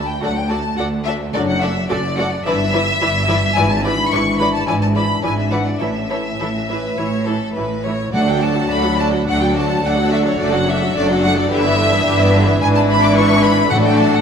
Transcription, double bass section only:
0.00 0.15 D2 medium
0.22 0.72 D2 medium
0.79 1.28 D2 medium
1.35 1.84 F#1 medium
1.90 2.39 F#1 medium
2.45 2.95 G1 medium
3.01 3.50 G1 medium
3.57 4.06 G#1 medium
4.13 4.62 G#1 medium
4.68 5.17 G#1 medium
5.24 5.75 G#1 medium
5.82 6.34 A1 medium
6.41 6.91 A1 medium
6.99 7.49 A1 medium
7.56 8.07 A1 medium
8.14 8.64 D2 medium
8.70 9.20 D2 medium
9.26 9.76 D2 medium
9.83 10.32 D2 medium
10.38 10.88 F#1 medium
10.95 11.44 F#1 medium
11.50 11.99 G1 medium
12.05 12.54 G1 medium
12.61 13.68 G#1 medium
13.71 14.21 A1 medium

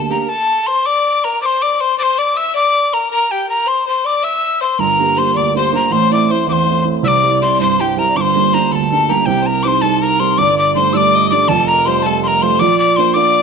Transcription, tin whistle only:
0.11 0.30 A#5 medium
0.29 0.68 A5 loud
0.67 0.87 C6 medium
0.86 1.26 D6 loud
1.24 1.41 A#5 medium
1.42 1.47 D6 medium
1.46 1.63 C6 loud
1.62 1.75 D6 medium
1.75 1.82 D6 medium
1.80 1.98 C6 medium
1.99 2.04 D6 loud
2.03 2.20 C6 loud
2.18 2.38 D6 loud
2.37 2.54 E6 medium
2.55 2.95 D6 loud
2.94 3.11 A#5 medium
3.12 3.33 A#5 medium
3.31 3.49 G5 medium
3.50 3.70 A#5 medium
3.68 3.87 C6 loud
3.88 4.08 C6 loud
4.06 4.26 D6 loud
4.24 4.62 E6 loud
4.62 4.82 C6 medium
4.80 5.20 A#5 loud
5.18 5.38 C6 medium
5.37 5.56 D6 loud
5.57 5.73 C6 medium
5.75 5.94 A#5 medium
5.92 6.12 C6 loud
6.13 6.33 D6 medium
6.31 6.48 C6 medium
6.49 6.84 C6 medium
6.49 6.54 D6 medium
7.04 7.39 D6 loud
7.04 7.09 E6 loud
7.42 7.58 C6 medium
7.61 7.82 C6 loud
7.81 8.00 G5 medium
7.99 8.18 A#5 medium
8.16 8.22 D6 medium
8.21 8.56 C6 loud
8.54 8.73 A#5 medium
8.72 9.08 A5 medium
8.72 8.76 C6 medium
9.08 9.27 A#5 medium
9.26 9.48 G5 loud
9.46 9.64 A#5 loud
9.63 9.69 D6 medium
9.68 9.83 C6 medium
9.82 10.01 A5 loud
10.02 10.21 A#5 loud
10.20 10.40 C6 loud
10.38 10.57 D6 loud
10.58 10.75 D6 loud
10.75 10.95 C6 medium
10.93 10.98 E6 loud
10.97 11.29 D6 loud
11.30 11.50 D6 loud
11.48 11.67 A5 loud
11.67 11.87 A#5 loud
11.86 12.04 C6 medium
12.02 12.22 A5 loud
12.23 12.29 C6 medium
12.28 12.44 A#5 medium
12.42 12.61 C6 medium
12.59 12.78 D6 loud
12.79 12.98 D6 loud
12.96 13.15 C6 medium
13.14 13.42 D6 loud

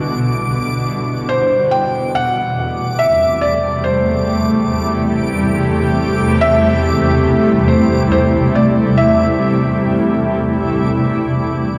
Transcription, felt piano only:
1.29 1.73 C5 medium
1.71 2.11 G5 medium
2.15 3.03 F#5 medium
2.99 3.43 E5 medium
3.41 3.86 D5 medium
3.84 5.09 C5 medium
6.41 7.74 E5 loud
7.68 8.10 C5 medium
8.12 8.57 C5 medium
8.55 9.00 D5 medium
8.97 11.09 E5 medium

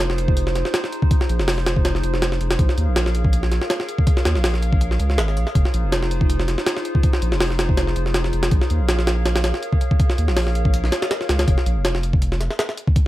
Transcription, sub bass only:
0.00 0.64 F1 medium
1.29 1.41 A#1 loud
1.39 2.02 F1 medium
2.03 2.39 F1 medium
2.40 2.57 F1 loud
2.59 2.68 A#1 loud
2.77 2.89 D#2 loud
2.88 3.60 A#1 medium
4.26 4.37 D#2 loud
4.36 4.98 A#1 medium
5.00 5.20 C#2 loud
5.18 5.38 G#1 medium
5.37 5.46 A#1 loud
5.55 5.64 F1 loud
5.74 5.85 A#1 loud
5.84 6.56 F1 medium
7.22 7.34 A#1 loud
7.32 7.95 F1 medium
7.96 8.32 F1 medium
8.33 8.50 F1 loud
8.52 8.61 A#1 loud
8.70 8.82 D#2 loud
8.80 9.53 A#1 medium
10.18 10.30 D#2 loud
10.28 10.91 A#1 medium
11.29 11.46 C#2 medium
11.48 11.57 F1 loud
11.66 11.78 A#1 loud
11.76 12.49 F1 medium

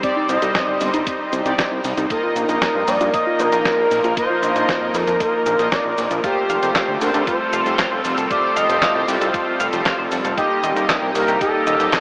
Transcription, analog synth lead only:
0.03 0.27 D5 loud
0.29 0.64 D#5 loud
0.64 0.77 D5 loud
2.11 2.89 A#4 loud
2.88 3.13 D5 loud
3.14 3.41 D#5 loud
3.40 3.64 A#4 loud
3.65 4.13 A#4 loud
4.17 4.96 C5 loud
4.95 5.20 A#4 loud
5.20 5.74 A#4 loud
5.72 6.11 D5 loud
6.24 7.03 G4 loud
7.01 7.26 A#4 medium
7.27 8.01 C5 loud
8.30 8.58 D5 loud
8.56 9.08 D#5 loud
10.37 10.85 G4 loud
11.15 11.39 A#4 loud
11.41 12.00 A4 loud

